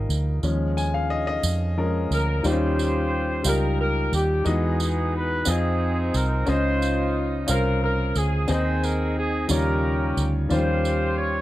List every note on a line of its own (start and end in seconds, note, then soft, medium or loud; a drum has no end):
0.00 0.40 F3 medium
0.00 0.39 G3 soft
0.00 0.39 G#3 soft
0.00 0.40 D#4 medium
0.00 2.40 D#4 medium
0.00 2.40 F4 medium
0.00 0.38 A#4 medium
0.00 0.44 D#5 medium
0.00 0.44 F5 medium
0.00 0.44 G5 medium
0.09 0.40 D2 medium
0.09 tambourine medium
0.42 1.40 D#2 loud
0.42 1.76 F3 medium
0.42 1.76 G#3 soft
0.42 2.42 C#4 medium
0.42 1.77 C#4 medium
0.42 2.42 G#4 medium
0.42 tambourine soft
0.77 0.94 G#5 medium
0.77 tambourine medium
0.94 1.11 F5 medium
1.10 1.26 D#5 medium
1.27 1.79 D#5 loud
1.43 2.07 F2 medium
1.43 tambourine loud
1.77 2.08 F3 medium
1.77 2.08 G#3 soft
1.77 2.08 C#4 medium
1.77 2.09 A#4 medium
2.11 2.42 D2 medium
2.11 2.44 A#4 medium
2.11 tambourine medium
2.43 3.41 D#2 medium
2.43 3.41 D#3 medium
2.43 3.28 G3 medium
2.43 3.29 D#4 medium
2.43 3.29 F4 medium
2.43 3.42 F4 medium
2.43 3.42 G4 medium
2.43 2.51 C5 medium
2.43 3.47 C5 medium
2.43 tambourine soft
2.52 3.33 C#4 medium
2.79 tambourine soft
3.43 4.08 C#2 medium
3.43 4.29 G3 medium
3.43 4.30 D#4 medium
3.43 4.30 F4 medium
3.43 4.30 G4 medium
3.43 tambourine loud
3.48 3.79 A#4 medium
3.81 4.11 A#4 medium
4.12 4.43 D#2 medium
4.12 4.47 G4 medium
4.12 tambourine medium
4.45 5.43 E2 loud
4.45 5.43 E3 medium
4.45 5.30 G#3 medium
4.45 5.43 B3 medium
4.45 5.30 D#4 medium
4.45 5.43 D#4 medium
4.45 5.31 F#4 medium
4.45 4.80 G#4 medium
4.45 5.31 D#5 medium
4.45 tambourine soft
4.80 5.12 G#4 medium
4.80 tambourine medium
5.15 5.48 B4 loud
5.45 6.10 F2 loud
5.45 6.31 C4 medium
5.45 6.44 C4 medium
5.45 6.45 D#4 medium
5.45 6.31 F4 medium
5.45 6.32 G#4 medium
5.45 6.32 D#5 medium
5.45 tambourine loud
5.49 6.15 G#4 medium
6.14 6.45 C2 medium
6.14 6.48 A#4 medium
6.14 tambourine medium
6.46 7.44 C#2 loud
6.46 7.44 C#3 medium
6.46 7.31 C#4 medium
6.46 7.45 D#4 medium
6.46 7.32 F4 medium
6.46 7.45 F4 medium
6.46 7.32 C5 medium
6.46 7.19 C5 loud
6.46 7.33 D#5 medium
6.46 tambourine soft
6.82 tambourine soft
7.47 8.12 C2 loud
7.47 8.32 C#4 medium
7.47 8.32 F4 medium
7.47 8.33 C5 medium
7.47 8.33 F5 medium
7.47 tambourine loud
7.51 7.81 A#4 medium
7.84 8.14 A#4 medium
8.15 8.46 D2 medium
8.15 8.49 G#4 medium
8.15 tambourine medium
8.48 9.46 D#2 loud
8.48 9.46 D#3 medium
8.48 9.33 C4 medium
8.48 9.33 D#4 medium
8.48 9.47 D#4 medium
8.48 9.34 G#4 medium
8.48 9.17 G#4 medium
8.48 8.84 C5 medium
8.48 9.34 D#5 medium
8.48 tambourine medium
8.83 9.17 A#4 medium
8.83 tambourine soft
9.18 9.48 G#4 medium
9.48 10.13 D#2 medium
9.48 10.46 C#3 medium
9.48 10.33 G3 medium
9.48 10.34 D#4 medium
9.48 10.34 F4 medium
9.48 10.34 G4 medium
9.48 10.35 C#5 medium
9.48 tambourine medium
9.52 10.34 C#4 medium
9.52 10.23 A#4 loud
10.17 10.48 D2 medium
10.17 tambourine medium
10.49 11.41 D#2 loud
10.49 11.41 D#3 medium
10.49 10.56 F3 medium
10.49 11.35 C#4 medium
10.49 11.35 F4 medium
10.49 11.41 F4 medium
10.49 11.41 G4 medium
10.49 11.14 C5 medium
10.49 11.36 C5 medium
10.49 tambourine soft
10.55 11.37 G3 medium
10.85 tambourine soft
11.18 11.41 C#5 loud